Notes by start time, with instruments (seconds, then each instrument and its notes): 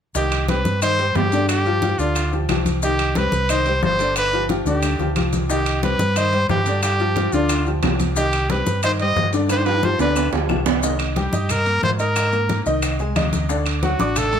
0.15 fingered electric bass C2, upright piano D#3 D#4 D#5, trumpet G4, high bongo, high conga, maracas
0.32 high conga, high timbale, claves, maracas
0.48 upright piano G3 C4 G4, trumpet B4, high bongo, high conga, high timbale, maracas
0.65 fingered electric bass G2, high conga, maracas
0.82 upright piano D#3 D#4 D#5, trumpet C5, high bongo, high conga, high timbale, claves, maracas
0.99 upright piano G3 G4 C5, high conga, high timbale, maracas
1.15 fingered electric bass G2, trumpet G4, high bongo, low bongo, high conga, low timbale, maracas
1.32 upright piano D3 D4 D5, high conga, high timbale, maracas
1.49 trumpet G4, high bongo, high conga, high timbale, claves, maracas
1.65 upright piano F3 F4 G4, high bongo, high conga, maracas
1.82 upright piano F3 F4 G4, high bongo, high conga, high timbale, maracas
1.99 fingered electric bass D2, upright piano D3 D4 D5, trumpet F4, maracas
2.15 high bongo, high conga, high timbale, claves, maracas
2.32 upright piano F3 F4 G4, high bongo, high conga, maracas
2.49 fingered electric bass C2, upright piano F3 F4 G4, high bongo, low bongo, high conga, high timbale, claves, maracas
2.66 high bongo, high conga, high timbale, maracas
2.82 upright piano D#3 D#4 D#5, trumpet G4, high bongo, high conga, maracas
2.99 high conga, high timbale, claves, maracas
3.15 upright piano G3 C4 G4, trumpet B4, high bongo, high conga, high timbale, maracas
3.32 fingered electric bass C2, high conga, maracas
3.49 upright piano D#3 D#4 D#5, trumpet C5, high bongo, high conga, high timbale, claves, maracas
3.66 upright piano G3 G4 C5, high conga, high timbale, maracas
3.82 fingered electric bass G1, trumpet C5, high bongo, low bongo, high conga, maracas
3.99 upright piano D3 D4 D5, high conga, high timbale, maracas
4.16 trumpet B4, high bongo, high conga, high timbale, claves, maracas
4.33 upright piano F3 F4 G4, high bongo, high conga, maracas
4.49 upright piano F3 F4 G4, high bongo, high conga, high timbale, maracas
4.65 fingered electric bass D2, upright piano D3 D4 D5, trumpet G4, high bongo, maracas
4.83 high bongo, high conga, high timbale, claves, maracas
4.99 fingered electric bass D2, upright piano F3 F4 G4, low bongo, high conga, maracas
5.16 fingered electric bass C2, upright piano F3 F4 G4, high conga, high timbale, claves, maracas
5.33 low bongo, high conga, high timbale, maracas
5.50 upright piano D#3 D#4 D#5, trumpet G4, high bongo, high conga, maracas
5.66 high conga, high timbale, claves, maracas
5.83 upright piano G3 C4 G4, trumpet B4, high bongo, high conga, high timbale, maracas
5.99 fingered electric bass G2, high conga, maracas
6.16 upright piano D#3 D#4 D#5, trumpet C5, high bongo, high conga, high timbale, claves, maracas
6.33 upright piano G3 G4 C5, high conga, high timbale, maracas
6.49 fingered electric bass G2, trumpet G4, high bongo, low bongo, high conga, maracas
6.66 upright piano D3 D4 D5, high conga, high timbale, maracas
6.83 trumpet G4, high bongo, high conga, high timbale, claves, maracas
7.00 upright piano F3 F4 G4, high bongo, high conga, maracas
7.16 upright piano F3 F4 G4, high bongo, high conga, high timbale, maracas
7.33 fingered electric bass D2, upright piano D3 D4 D5, trumpet F4, maracas
7.49 high bongo, high conga, high timbale, claves, maracas
7.66 upright piano F3 F4 G4, high bongo, high conga, maracas
7.83 fingered electric bass C2, upright piano F3 F4 G4, high bongo, low bongo, high conga, high timbale, low timbale, claves, maracas
8.00 high bongo, high conga, high timbale, maracas
8.16 upright piano D#3 D#4 D#5, trumpet G4, high bongo, high conga, maracas
8.33 high conga, high timbale, claves, maracas
8.50 upright piano G3 C4 G4, trumpet B4, high bongo, high conga, high timbale, maracas
8.66 fingered electric bass G2, high conga, maracas
8.83 upright piano D#3 D#4 D#5, trumpet C5, high bongo, high conga, high timbale, claves, maracas
8.99 upright piano G3 G4 C5, trumpet D#5, high conga, high timbale, maracas
9.16 fingered electric bass G2, high bongo, low bongo, high conga, maracas
9.33 upright piano D3 D4 D5, high conga, high timbale, maracas
9.49 trumpet B4, high bongo, high conga, high timbale, claves, maracas
9.57 trumpet C5
9.65 upright piano F3 F4 G4, trumpet B4, high bongo, high conga, high timbale, maracas
9.83 upright piano F3 F4 G4, trumpet C5, high bongo, high conga, maracas
9.99 fingered electric bass D2, upright piano D3 D4 D5, trumpet B4, low timbale, maracas
10.16 high bongo, high conga, low timbale, claves, maracas
10.33 fingered electric bass D2, upright piano F3 F4 G4, high bongo, high conga, low timbale, maracas
10.49 fingered electric bass C2, upright piano F3 F4 G4, high bongo, low bongo, high conga, claves, maracas
10.66 high bongo, high conga, low timbale, maracas
10.83 upright piano D#3 D#4 D#5, high bongo, maracas
10.99 high conga, high timbale, claves, maracas
11.16 upright piano G3 G4 G5, trumpet G4, high bongo, high conga, high timbale, maracas
11.32 fingered electric bass G2, upright piano D#4 D#5 D#6, high conga, maracas
11.49 trumpet A#4, high bongo, high conga, low conga, high timbale, claves, maracas
11.66 upright piano A#3 A#4 A#5, high conga, high timbale, maracas
11.82 fingered electric bass G#2, trumpet C5, high bongo, low bongo, high conga, maracas
11.99 upright piano D#4 D#5 D#6, trumpet A#4, high conga, high timbale, maracas
12.16 high bongo, high conga, high timbale, claves, maracas
12.32 upright piano A#3 A#4 A#5, high bongo, high conga, maracas
12.49 high bongo, high conga, high timbale, maracas
12.66 fingered electric bass C2, upright piano D#3 D#4 D#5, maracas
12.82 high bongo, high conga, high timbale, claves, maracas
12.99 upright piano G#3 G#4 G#5, high bongo, high conga, maracas
13.16 fingered electric bass D2, upright piano C3 D#4 D#5, high bongo, low bongo, high conga, high timbale, claves, maracas
13.33 high bongo, high conga, high timbale, maracas
13.49 upright piano D3 D4 D5, high bongo, maracas
13.66 high conga, high timbale, claves, maracas
13.83 upright piano F#3 F#4 F#5, trumpet F#4, high bongo, high conga, high timbale, maracas
13.99 fingered electric bass A1, upright piano D4 D5 D6, high conga, maracas
14.16 trumpet A4, high bongo, high conga, low conga, high timbale, claves, maracas
14.32 upright piano A3 A4 A5, high conga, high timbale, maracas